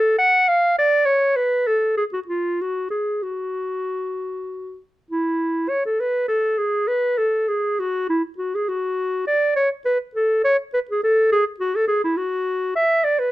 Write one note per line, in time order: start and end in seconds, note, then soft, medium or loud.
0.00 0.18 A4 medium
0.18 0.50 F#5 medium
0.48 0.78 F5 medium
0.78 1.07 D5 medium
1.06 1.37 C#5 medium
1.36 1.69 B4 medium
1.67 1.97 A4 medium
1.97 2.04 G#4 medium
2.13 2.20 F#4 medium
2.28 2.63 F4 medium
2.61 2.90 F#4 medium
2.90 3.24 G#4 soft
3.23 4.80 F#4 medium
5.11 5.71 E4 medium
5.69 5.84 C#5 medium
5.85 6.02 A4 medium
6.00 6.28 B4 medium
6.28 6.60 A4 medium
6.58 6.89 G#4 medium
6.88 7.19 B4 medium
7.18 7.50 A4 medium
7.48 7.81 G#4 medium
7.79 8.09 F#4 medium
8.09 8.22 E4 medium
8.38 8.56 F#4 medium
8.55 8.70 G#4 medium
8.68 9.26 F#4 medium
9.27 9.55 D5 medium
9.56 9.69 C#5 medium
9.85 9.98 B4 medium
10.15 10.43 A4 medium
10.44 10.57 C#5 medium
10.74 10.80 B4 medium
10.91 11.03 G#4 medium
11.03 11.31 A4 medium
11.32 11.45 G#4 medium
11.60 11.77 F#4 medium
11.76 11.87 A4 medium
11.88 12.02 G#4 medium
12.04 12.18 E4 medium
12.17 12.75 F#4 medium
12.76 13.06 E5 medium
13.04 13.21 D5 medium
13.19 13.32 B4 medium